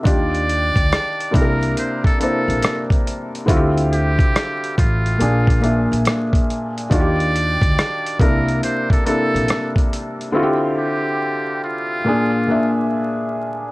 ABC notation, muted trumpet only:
X:1
M:4/4
L:1/16
Q:"Swing 16ths" 1/4=70
K:Cmix
V:1 name="Muted trumpet"
d6 B2 c A A3 z3 | z2 G4 F6 z4 | d6 B2 c A A3 z3 | z2 G4 F6 z4 |]